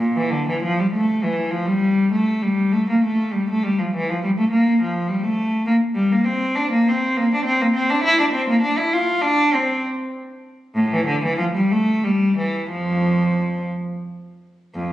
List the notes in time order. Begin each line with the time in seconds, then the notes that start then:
0.00 A#2
0.16 E3
0.31 D3
0.49 E3
0.63 F3
0.79 G3
0.94 A3
1.23 E3
1.51 F3
1.66 G3
2.12 A3
2.42 G3
2.73 A3
2.90 A#3
3.04 A3
3.32 G3
3.50 A3
3.64 G3
3.79 F3
3.95 E3
4.10 F3
4.23 G3
4.38 A3
4.51 A#3
4.82 F3
5.08 G3
5.24 A3
5.66 A#3
5.94 G3
6.12 A#3
6.25 C4
6.55 D4
6.71 A#3
6.88 C4
7.17 A#3
7.34 D4
7.45 C4
7.62 A#3
7.74 C4
7.90 D4
8.04 E4
8.20 D4
8.33 C4
8.49 A#3
8.62 D4
8.78 E4
8.93 F4
9.22 D4
9.54 C4
10.75 A2
10.93 E3
11.06 D3
11.24 E3
11.38 F3
11.55 G3
11.71 A3
12.04 G3
12.38 E3
12.70 F2 F3
14.74 F2